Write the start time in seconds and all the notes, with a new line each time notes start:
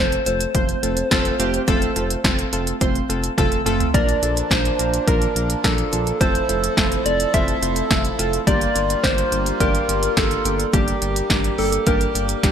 Already playing: F1 C4 A4 C5
0.00 A3 F4
0.12 closed hi-hat
0.26 F1 A3 C4 F4 A4 C5, closed hi-hat
0.41 closed hi-hat
0.55 F1 A3 C4 F4 C5, kick, closed hi-hat
0.69 closed hi-hat
0.83 F1 A3 C4 F4 A4, closed hi-hat
0.97 closed hi-hat
1.11 F1 A3 C4 F4 A4, kick, snare, closed hi-hat
1.25 closed hi-hat
1.39 F1 A3 C4 F4 G4, closed hi-hat
1.54 closed hi-hat
1.68 F1 A3 C4 F4 A4, kick, closed hi-hat
1.82 closed hi-hat
1.96 F1 A3 C4 F4 A4, closed hi-hat
2.10 closed hi-hat
2.24 F1 A3 C4 F4 A4, kick, snare, closed hi-hat
2.39 closed hi-hat
2.53 F1 A3 C4 F4 A4, closed hi-hat
2.67 closed hi-hat
2.81 F1 A3 C4 F4 C5, kick, closed hi-hat
2.95 closed hi-hat
3.09 F1 A3 C4 F4 A4, closed hi-hat
3.24 closed hi-hat
3.38 F1 A3 C4 F4 A4, kick, closed hi-hat, high tom
3.52 closed hi-hat
3.66 F1 A3 C4 F4 A4, closed hi-hat, mid tom
3.80 closed hi-hat, floor tom
3.94 A#1 F3 A#3 D4 F4 A#4 D5, kick, closed hi-hat
4.09 closed hi-hat
4.23 A#1 A#3 D4 F4 A4, closed hi-hat
4.37 closed hi-hat
4.51 A#1 A#3 D4 F4 C5, kick, snare, closed hi-hat
4.65 closed hi-hat
4.79 A#1 A#3 D4 F4 A#4, closed hi-hat
4.94 closed hi-hat
5.07 A#1 A#3 D4 F4 A#4, kick, closed hi-hat
5.22 closed hi-hat
5.36 A#1 A#3 D4 F4 A#4, closed hi-hat
5.50 closed hi-hat
5.64 A#1 A#3 D4 F4 A4 A#4, kick, snare, closed hi-hat
5.78 closed hi-hat
5.92 A#1 A#3 D4 F4 A4, closed hi-hat
6.07 closed hi-hat
6.21 F1 F3 A3 C4 E4 F4 A4 C5, kick, closed hi-hat
6.35 closed hi-hat
6.49 F1 A3 C4 F4 A4, closed hi-hat
6.64 closed hi-hat
6.77 F1 A3 C4 F4 A4, kick, snare, closed hi-hat
6.92 closed hi-hat
7.06 F1 A3 C4 F4 A4 D5, closed hi-hat
7.20 closed hi-hat
7.34 F1 A3 C4 F4 A4 E5, kick, closed hi-hat
7.48 closed hi-hat
7.62 F1 A3 C4 F4 C5, closed hi-hat
7.76 closed hi-hat
7.90 F1 A3 C4 F4 A4, kick, snare, closed hi-hat
8.05 closed hi-hat
8.19 F1 A3 C4 F4 A4, closed hi-hat
8.33 closed hi-hat
8.47 G1 G3 A#3 D4 F4 G4 D5, kick, closed hi-hat
8.61 closed hi-hat
8.75 G1 G3 A#3 D4 G4, closed hi-hat
8.90 closed hi-hat
9.03 G1 G3 A#3 D4 G4 C5, kick, snare, closed hi-hat
9.18 closed hi-hat
9.32 G1 G3 A#3 D4 G4, closed hi-hat
9.46 closed hi-hat
9.60 G1 G3 A#3 D4 G4 A#4, kick, closed hi-hat
9.75 closed hi-hat
9.89 G1 G3 A#3 D4 G4, closed hi-hat
10.03 closed hi-hat
10.17 G1 G3 A#3 D4 G4 A4, kick, snare, closed hi-hat
10.31 closed hi-hat
10.45 G1 G3 A#3 D4 G4, closed hi-hat
10.60 closed hi-hat
10.73 G1 G3 A#3 D4 G4, kick, closed hi-hat
10.88 closed hi-hat
11.02 G1 G3 A#3 D4 G4, closed hi-hat
11.16 closed hi-hat
11.30 G1 G3 A#3 D4 G4, kick, snare, closed hi-hat
11.44 closed hi-hat
11.58 G1 G3 A#3 D4 G4 A4, open hi-hat
11.72 closed hi-hat
11.87 G1 G3 A#3 D4 G4 A#4, kick, closed hi-hat
12.01 closed hi-hat
12.15 G1 G3 A#3 D4 G4, closed hi-hat
12.29 closed hi-hat
12.43 G1 G3 A#3 D4 G4, kick, snare, closed hi-hat